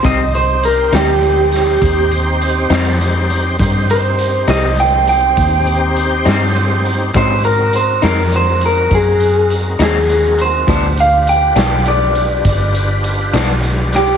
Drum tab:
HH |xxxxxxxxxxxx|xxxxxxxxxxxx|xxxxxxxxxxxx|xxxxxxxxxxxx|
SD |---o-o---o--|---o-----o--|---o-----o--|---o-----o-o|
BD |o-----o-----|o-----o-----|o-----o-----|o-----o-----|